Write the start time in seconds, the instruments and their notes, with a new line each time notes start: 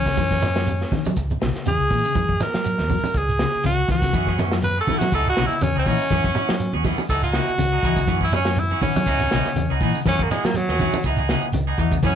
Already playing: fingered electric bass C#2, tenor saxophone C#4
0.06 clean electric guitar C#3, kick, snare, closed hi-hat, shekere
0.17 fingered electric bass F#2, clean electric guitar E3, kick, snare, closed hi-hat, low conga, shekere
0.31 kick, snare
0.42 snare, closed hi-hat, high conga, shekere
0.56 clean electric guitar F#3, snare, closed hi-hat, shekere
0.67 closed hi-hat, high conga, shekere
0.82 snare
0.92 clean electric guitar D#3, kick, snare, open hi-hat, high conga, low conga, shekere
1.05 fingered electric bass F#3, closed hi-hat, high conga, low conga, shekere
1.16 fingered electric bass C#2, kick, closed hi-hat, shekere
1.30 high conga, shekere
1.41 fingered electric bass B1, clean electric guitar C#3, snare, closed hi-hat
1.55 snare, closed hi-hat, shekere
1.66 fingered electric bass E2, clean electric guitar C#3, tenor saxophone G#4, closed hi-hat, high conga, shekere
1.80 fingered electric bass C#2
1.91 fingered electric bass A#2, clean electric guitar E3, kick, open hi-hat, shekere
2.05 clean electric guitar C#3, shekere
2.15 fingered electric bass F#2, clean electric guitar E3, kick, closed hi-hat, low conga, shekere
2.29 fingered electric bass F#2, kick
2.40 tenor saxophone A#4, muted fingered electric bass stroke, snare, closed hi-hat, high conga, shekere
2.54 clean electric guitar F#3, fingered electric bass F#3, snare, closed hi-hat, shekere
2.64 closed hi-hat, shekere
2.78 fingered electric bass E2, snare, high conga
2.90 clean electric guitar F#3, kick, open hi-hat, high conga, low conga, shekere
3.04 high conga, low conga, shekere
3.14 fingered electric bass C#2, tenor saxophone G#4, kick, closed hi-hat, shekere
3.29 shekere
3.39 clean electric guitar C#3, snare, closed hi-hat
3.54 muted fingered electric bass stroke, shekere
3.64 fingered electric bass C#2, clean electric guitar C#3, tenor saxophone F#4, closed hi-hat, high conga, shekere
3.88 fingered electric bass C#2, clean electric guitar E3, tenor saxophone F#4, kick, snare, closed hi-hat, shekere
4.02 clean electric guitar C#3, kick, snare, closed hi-hat, shekere
4.13 fingered electric bass F#2, clean electric guitar E3 B3 C#4 G#4, kick, closed hi-hat, low conga, shekere
4.27 clean electric guitar B3 C#4 G#4, kick, snare
4.38 clean electric guitar E3 B3 C#4, snare, closed hi-hat, high conga, shekere
4.51 clean electric guitar F#3, snare, closed hi-hat, shekere
4.62 tenor saxophone B4, closed hi-hat, high conga, shekere
4.78 clean electric guitar B3 C#4 G#4, tenor saxophone A4
4.87 clean electric guitar D#3 E3 B3 G#4, kick, open hi-hat, high conga, low conga, shekere
4.98 tenor saxophone F#4, snare, closed hi-hat, high conga, low conga, shekere
5.02 fingered electric bass F#3
5.12 fingered electric bass C#2, clean electric guitar E3 B3 D#4 G#4, tenor saxophone A4, kick, closed hi-hat, shekere
5.26 clean electric guitar B3 D#4 G#4, tenor saxophone F#4, shekere
5.37 fingered electric bass B1, clean electric guitar C#3 E3 B3 D#4 G#4, snare, closed hi-hat
5.46 tenor saxophone E4, closed hi-hat
5.51 shekere
5.61 fingered electric bass E2, clean electric guitar C#3, tenor saxophone C#4, closed hi-hat, high conga, shekere
5.76 fingered electric bass C#2, clean electric guitar B3 D#4 G#4, tenor saxophone C#4
5.86 fingered electric bass A#2, clean electric guitar E3 B3 D#4 G#4, kick, open hi-hat, shekere
5.99 shekere
6.11 fingered electric bass F#2, clean electric guitar E3 B3 C#4 G#4, kick, closed hi-hat, low conga, shekere
6.24 fingered electric bass F#2, clean electric guitar B3 C#4 G#4, kick, high conga
6.35 clean electric guitar E3 B3 C#4 G#4, muted fingered electric bass stroke, closed hi-hat, high conga, shekere
6.49 clean electric guitar F#3, fingered electric bass F#3, snare, closed hi-hat, shekere
6.60 closed hi-hat, shekere
6.73 fingered electric bass E2, clean electric guitar B3 C#4 G#4, high conga
6.84 clean electric guitar E3 F#3 B3 C#4 G#4, kick, snare, open hi-hat, high conga, low conga, shekere
6.98 high conga, shekere
7.09 fingered electric bass C#2, clean electric guitar E3 B3 D#4 G#4, tenor saxophone A4, kick, closed hi-hat, shekere
7.23 clean electric guitar B3 D#4 G#4, tenor saxophone F#4, shekere
7.33 clean electric guitar C#3 E3 B3 D#4 G#4, snare, closed hi-hat
7.48 muted fingered electric bass stroke, shekere
7.58 fingered electric bass C#2, clean electric guitar C#3, closed hi-hat, high conga, shekere
7.72 clean electric guitar D#4 G#4, muted clean electric guitar stroke
7.83 fingered electric bass C#2, clean electric guitar E3 B3 D#4 G#4, kick, closed hi-hat, shekere
7.96 clean electric guitar C#3, kick, closed hi-hat, shekere
8.07 fingered electric bass F#2, clean electric guitar E3 B3 C#4 G#4, kick, closed hi-hat, low conga, shekere
8.21 clean electric guitar B3 C#4 G#4, tenor saxophone E4, kick
8.32 clean electric guitar B3 C#4 G#4, tenor saxophone C#4, closed hi-hat, high conga, shekere
8.45 clean electric guitar F#3, snare, closed hi-hat, shekere
8.56 tenor saxophone E4, closed hi-hat, high conga, shekere
8.71 clean electric guitar B3 C#4 G#4, high conga
8.82 clean electric guitar D#3 E3 B3 C#4, tenor saxophone C#4, kick, open hi-hat, high conga, low conga, shekere
8.95 fingered electric bass F#3, closed hi-hat, high conga, low conga, shekere
9.06 fingered electric bass C#2, clean electric guitar E3 B3 D#4 G#4, kick, closed hi-hat, shekere
9.20 clean electric guitar B3 D#4 G#4, high conga, shekere
9.31 fingered electric bass B1, clean electric guitar C#3 E3 B3 D#4 G#4, snare, closed hi-hat
9.45 snare, closed hi-hat, shekere
9.55 fingered electric bass E2, clean electric guitar C#3, closed hi-hat, high conga, shekere
9.70 fingered electric bass C#2, clean electric guitar B3 D#4 G#4
9.81 fingered electric bass A#2, clean electric guitar E3 B3 D#4 G#4, kick, open hi-hat, shekere
9.95 clean electric guitar C#3, shekere
10.05 fingered electric bass F#2, clean electric guitar E3 B3 C#4 G#4, tenor saxophone C#4, kick, snare, closed hi-hat, low conga, shekere
10.19 fingered electric bass F#2, tenor saxophone A#3, clean electric guitar B3 C#4 G#4, kick, high conga
10.30 clean electric guitar E3 B3 C#4 G#4, tenor saxophone G#3, muted fingered electric bass stroke, closed hi-hat, high conga, shekere
10.44 clean electric guitar F#3, fingered electric bass F#3, tenor saxophone A#3, snare, closed hi-hat, shekere
10.54 tenor saxophone F#3, closed hi-hat, high conga, shekere
10.69 fingered electric bass E2, clean electric guitar C#4 G#4, snare
10.79 clean electric guitar D#3 E3 B3 C#4 G#4, kick, open hi-hat, high conga, low conga, shekere
10.92 high conga, low conga, shekere
11.03 fingered electric bass C#2, clean electric guitar E3 B3 D#4 G#4, kick, closed hi-hat, shekere
11.16 clean electric guitar B3 D#4 G#4, high conga, shekere
11.29 clean electric guitar C#3 E3 B3 D#4 G#4, snare, closed hi-hat
11.42 muted fingered electric bass stroke, shekere
11.52 fingered electric bass C#2, clean electric guitar C#3, closed hi-hat, high conga, shekere
11.67 clean electric guitar B3 D#4 G#4
11.78 fingered electric bass E2, clean electric guitar E3 B3 D#4, muted clean electric guitar stroke, kick, closed hi-hat, shekere
11.92 clean electric guitar C#3, kick, closed hi-hat, shekere
12.03 fingered electric bass F#2, clean electric guitar E3 B3 C#4 G#4, tenor saxophone C#4, kick, closed hi-hat, low conga, shekere